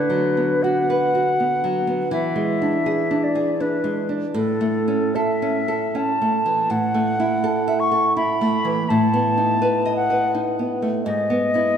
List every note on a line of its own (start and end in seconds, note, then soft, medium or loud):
0.00 2.09 D3 soft
0.00 0.64 B4 soft
0.10 0.53 F#3 soft
0.37 0.79 B3 soft
0.63 1.05 F#4 soft
0.63 2.12 F#5 medium
0.90 1.29 B4 soft
1.15 1.54 F#4 soft
1.40 1.78 B3 soft
1.64 2.03 F#3 soft
1.87 2.12 B3 soft
2.11 4.30 E3 soft
2.11 3.25 E5 medium
2.36 2.76 G#3 soft
2.62 3.01 D4 soft
2.86 3.26 G#4 soft
3.11 3.50 D4 soft
3.24 3.62 D5 soft
3.35 3.75 G#4 soft
3.60 4.00 D4 soft
3.60 4.09 B4 soft
3.84 4.24 G#3 soft
4.09 4.34 D4 soft
4.34 6.67 A2 soft
4.34 5.17 A4 medium
4.61 5.04 A3 soft
4.88 5.31 C#4 soft
5.15 5.58 A4 soft
5.15 5.98 E5 medium
5.42 5.85 C#4 soft
5.68 6.11 A4 soft
5.95 6.36 C#4 soft
5.95 6.72 A5 medium
6.22 6.61 A3 soft
6.46 6.71 E3 soft
6.70 8.85 A2 soft
6.70 7.81 F#5 medium
6.94 7.33 A3 soft
7.20 7.58 E4 soft
7.44 7.82 A4 soft
7.68 8.07 E5 soft
7.80 8.16 C#6 medium
7.92 8.31 A4 soft
8.16 8.55 E4 soft
8.16 8.91 B5 medium
8.41 8.80 A3 soft
8.65 8.89 E3 soft
8.89 11.01 A2 soft
8.89 9.96 A5 medium
9.13 9.52 B3 soft
9.38 9.76 D#4 soft
9.62 10.00 B4 soft
9.86 10.24 D#5 soft
9.96 10.32 F#5 medium
10.10 10.48 B4 soft
10.35 10.72 D#4 soft
10.59 10.96 B3 soft
10.82 11.06 A3 soft
11.04 11.76 G#2 soft
11.04 11.77 D#5 medium
11.30 11.53 B3 soft
11.54 11.76 B3 soft
11.54 11.76 E4 soft